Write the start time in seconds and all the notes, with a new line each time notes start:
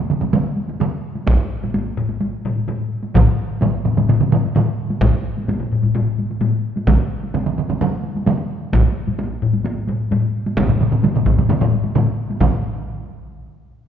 0.10 taiko mid
0.21 taiko mid, taiko high
0.33 taiko mid, taiko high
0.56 taiko high
0.69 taiko high
0.80 taiko mid, taiko high
1.15 taiko high
1.27 taiko, taiko low-mid, taiko high
1.63 taiko low-mid, taiko high
1.74 taiko high
1.98 taiko low-mid
2.09 taiko high
2.21 taiko high
2.45 taiko low-mid, taiko high
2.56 taiko high
2.68 taiko low-mid, taiko high
3.03 taiko high
3.15 taiko, taiko low-mid, taiko mid, taiko high
3.62 taiko low-mid, taiko mid, taiko high
3.85 taiko low-mid, taiko mid
3.97 taiko low-mid, taiko mid, taiko high
4.09 taiko low-mid, taiko mid, taiko high
4.20 taiko low-mid, taiko mid
4.32 taiko low-mid, taiko mid, taiko high
4.45 taiko high
4.55 taiko low-mid, taiko mid, taiko high
4.90 taiko high
5.01 taiko, taiko low-mid, taiko high
5.37 taiko high
5.48 taiko low-mid, taiko high
5.60 taiko low-mid
5.72 taiko low-mid
5.83 taiko low-mid, taiko high
5.95 taiko low-mid, taiko high
6.18 taiko high
6.30 taiko high
6.41 taiko low-mid, taiko high
6.76 taiko high
6.87 taiko, taiko mid, taiko high
7.23 taiko high
7.34 taiko mid, taiko high
7.46 taiko mid
7.58 taiko mid
7.69 taiko mid, taiko high
7.81 taiko mid, taiko high
8.04 taiko high
8.15 taiko high
8.26 taiko mid, taiko high
8.73 taiko, taiko low-mid, taiko high
9.07 taiko low-mid, taiko high
9.19 taiko high
9.42 taiko low-mid
9.53 taiko high
9.64 taiko high
9.88 taiko low-mid, taiko high
10.11 taiko low-mid, taiko high
10.46 taiko high
10.57 taiko, taiko low-mid, taiko mid, taiko high
10.69 taiko low-mid, taiko mid
10.80 taiko low-mid, taiko mid
10.92 taiko low-mid, taiko mid
11.03 taiko low-mid, taiko mid, taiko high
11.15 taiko low-mid, taiko mid
11.26 taiko, taiko low-mid, taiko mid
11.38 taiko low-mid, taiko mid, taiko high
11.50 taiko low-mid, taiko mid, taiko high
11.61 taiko low-mid, taiko mid
11.73 taiko high
11.84 taiko high
11.95 taiko low-mid, taiko mid, taiko high
12.30 taiko high
12.41 taiko, taiko low-mid, taiko mid, taiko high